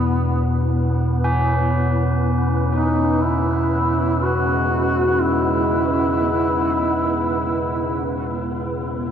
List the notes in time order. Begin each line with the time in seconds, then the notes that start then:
Already playing: E2 B2 B3 E4 B4 F#5
1.24 C#4
2.73 D#4
3.19 E4 G#4
3.70 D#5
4.23 F#4
5.22 E4